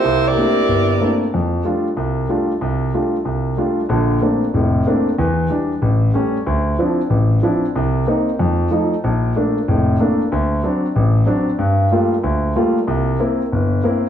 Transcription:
X:1
M:4/4
L:1/8
Q:"Swing" 1/4=187
K:F
V:1 name="Saxophone section"
[B,EGc] [B,EGd]6 z | z8 | z8 | z8 |
z8 | z8 | z8 | z8 |
z8 | z8 | z8 |]
V:2 name="Grand piano"
C,,2 [A,B,CDE] z G,,,2 [A,B,CDE] z | F,,2 [G,A,DF] z C,,2 [G,A,DF] z | C,,2 [G,A,DF] z C,,2 [G,A,DF] z | [B,,,D,]2 [A,B,CD] z [F,,,A,,]2 [A,B,CD] z |
[E,,E,]2 [E,G,D] z A,,,2 [G,A,^C] z | D,,2 [F,CDE] z A,,,2 [F,CDE] z | C,,2 [B,C_E] z F,,2 [F,A,E] z | B,,,2 [A,B,D] z [F,,,A,,]2 [A,B,D] z |
D,,2 [^F,CD] z A,,,2 [F,CD] z | G,,2 [G,A,B,F] z D,,2 [G,A,B,F] z | C,,2 [B,CE] z G,,,2 [B,CE] z |]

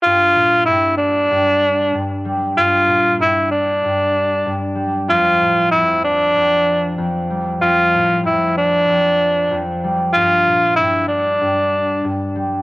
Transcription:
X:1
M:4/4
L:1/16
Q:"Swing 16ths" 1/4=95
K:Gdor
V:1 name="Tenor saxophone"
F4 E2 D6- D z3 | F4 E2 D6- D z3 | F4 E2 D6- D z3 | F4 E2 D6- D z3 |
F4 E2 D6- D z3 |]
V:2 name="Harp" clef=bass
G,,2 B,,2 G,,4 G,,4 G,,2 G,2 | G,,2 B,,2 G,,4 G,,4 G,,2 G,2 | F,,2 A,,2 F,,4 F,,4 F,,2 G,2 | F,,2 A,,2 F,,4 F,,4 F,,2 G,2 |
G,,2 B,,2 G,,4 G,,4 G,,2 G,2 |]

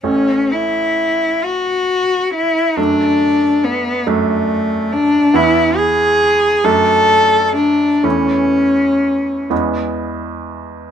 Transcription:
X:1
M:6/8
L:1/8
Q:3/8=44
K:A
V:1 name="Cello"
C E2 F2 E | D2 B, A,2 D | E G2 A2 D | C3 z3 |]
V:2 name="Grand piano"
[A,,,A,C]6 | [F,,A,D]3 [F,,A,D]3 | [E,,E,B,E]3 [F,,A,D]3 | [E,,E,A,C]3 [E,,E,G,B,]3 |]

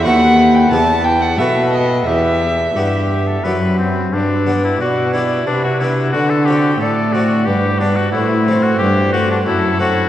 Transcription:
X:1
M:3/4
L:1/16
Q:1/4=90
K:Em
V:1 name="Violin"
f3 g a2 g f e2 ^d2 | e8 z4 | [K:G] B4 d4 B4 | A4 d4 B4 |
c8 A4 |]
V:2 name="Oboe"
B6 z2 B4 | G4 G3 A B2 C2 | [K:G] D3 E F2 E2 D F E2 | F A G2 A2 F2 G2 D F |
E3 F G2 F D E2 F2 |]
V:3 name="Harpsichord"
[B,FA]4 [B,EG]4 [B,FA]4 | z4 [B,EG]4 [B,EG]4 | [K:G] z2 [B,DG]4 [B,DG]4 [B,DG]2 | z2 [CDF]4 [CDF]2 z2 [B,D]2 |
z2 [A,CE]4 [A,CE]4 [A,CE]2 |]
V:4 name="Harpsichord" clef=bass
^D,,4 E,,4 B,,4 | E,,4 G,,4 F,,4 | [K:G] G,,4 B,,4 C,4 | D,4 A,,4 G,,4 |
A,,4 G,,4 F,,4 |]
V:5 name="Cello" clef=bass
^D,,4 E,,4 B,,4 | E,,4 G,,4 F,,4 | [K:G] G,,4 B,,4 C,4 | D,4 A,,4 G,,4 |
A,,4 G,,4 F,,4 |]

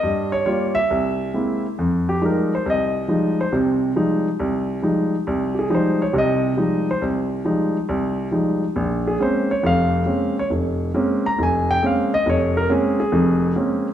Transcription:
X:1
M:4/4
L:1/8
Q:"Swing" 1/4=138
K:Fm
V:1 name="Grand piano"
e d d =e4 z | z G B c e3 c | z8 | z [GA] c d e3 c |
z8 | z A c d f3 d | z3 b a g f e | d B A A4- A |]
V:2 name="Grand piano" clef=bass
G,,2 [G,B,F] z C,,2 [^G,B,C=E] z | F,,2 [F,G,A,E] z C,,2 [F,G,A,E] z | [C,,C,]2 [F,G,A,E] z C,,2 [F,G,A,E] z | C,,2 [F,G,A,E] z [C,,C,]2 [F,G,A,E] z |
C,,2 [F,G,A,E] z C,,2 [F,G,A,E] z | B,,,2 [A,B,CD] z [F,,,F,,]2 [A,B,CD] z | F,,,2 [A,B,CD] z F,,,2 [A,B,CD] z | F,,,2 [A,B,CD] z [F,,,F,,]2 [A,B,CD] z |]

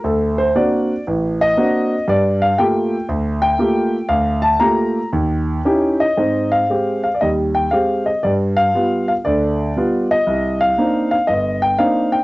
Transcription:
X:1
M:4/4
L:1/16
Q:"Swing" 1/4=118
K:Gm
V:1 name="Grand piano"
A2 c2 d4 z2 e6 | d2 f2 g4 z2 g6 | f2 a2 b4 z6 e2- | e2 f4 f3/2 d/2 e2 g2 f2 e2 |
d2 f4 f2 d6 e2- | e2 f4 f2 e2 g2 f2 g2 |]
V:2 name="Grand piano"
D,,4 [B,CD^F]2 z2 A,,,4 [B,CDF]2 z2 | G,,4 [A,B,FG]2 z2 D,,4 [A,B,FG]2 z2 | D,,4 [A,B,FG]2 z2 E,,4 [_DE_FG]2 z2 | [_A,,C]4 [_A,CG]2 z2 [E,,G,]4 [A,CG]2 z2 |
G,,4 [G,=B,F]2 z2 [D,,D,]4 [G,B,F]2 z2 | C,,4 [B,CDE]2 z2 G,,,4 [B,CDE]2 z2 |]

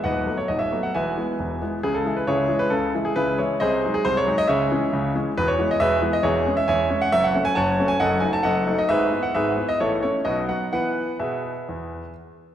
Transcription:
X:1
M:4/4
L:1/16
Q:1/4=135
K:E
V:1 name="Grand piano"
[Bdf]3 c d e2 f [Beg]6 z2 | G A2 B [EGc]3 B A3 G [EGB]2 c2 | [G^Bd]3 G B c2 d [Gce]6 z2 | B c2 d [GBe]3 d [EGc]3 e [ceg]3 f |
e f2 g [cfa]3 g [Adf]2 g a [Adf]3 d | [GBe]3 f [GBe]3 d [EAc]2 c2 [FBd]2 f2 | [Bf]4 [GBe]8 z4 |]
V:2 name="Grand piano" clef=bass
[D,,,D,,]2 [F,A,B,]2 [D,,,D,,]2 [F,A,B,]2 [E,,,E,,]2 [E,G,B,]2 [E,,,E,,]2 [E,G,B,]2 | [C,,C,]2 [E,G,E]2 [C,,C,]2 [E,G,E]2 [C,,C,]2 [E,G,E]2 [C,,C,]2 [E,G,E]2 | [^B,,,^B,,]2 [F,G,D]2 [B,,,B,,]2 [F,G,D]2 [C,,C,]2 [E,G,C]2 [C,,C,]2 [E,G,C]2 | [E,,,E,,]2 [E,G,B,]2 [E,,,E,,]2 [E,G,B,]2 [E,,,E,,]2 [G,C]2 [E,,,E,,]2 [G,C]2 |
[F,,,F,,]2 [F,A,C]2 [F,,,F,,]2 [F,A,C]2 [F,,,F,,]2 [F,A,D]2 [F,,,F,,]2 [F,A,D]2 | [G,,,G,,]2 [B,E]2 [G,,,G,,]2 [B,E]2 [A,,,A,,]2 [A,CE]2 [B,,,B,,]2 [F,B,]2 | [E,B,]4 B,,4 E,,4 z4 |]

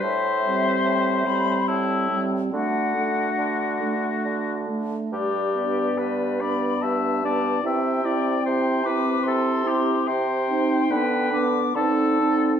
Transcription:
X:1
M:3/4
L:1/8
Q:1/4=72
K:G
V:1 name="Flute"
e3 b a z | f4 z2 | d3 b a2 | g3 d' c'2 |
g3 d' a z |]
V:2 name="Oboe"
c4 E z | F4- F z | G2 B d e d | e d c B A G |
c2 B z A2 |]
V:3 name="Clarinet"
z C2 C2 C | D D2 D2 D | z D2 D2 D | E E2 E2 E |
z _E D D E E |]
V:4 name="French horn"
z G,2 G,2 G, | A, A,2 A,2 A, | z B,2 B,2 B, | C C2 C2 C |
z C B, B, C C |]
V:5 name="Bassoon" clef=bass
A,,2 A,,2 A,,2 | D,2 D,2 D,2 | G,,2 G,,2 G,,2 | C,2 C,2 C,2 |
C,2 D,2 D,2 |]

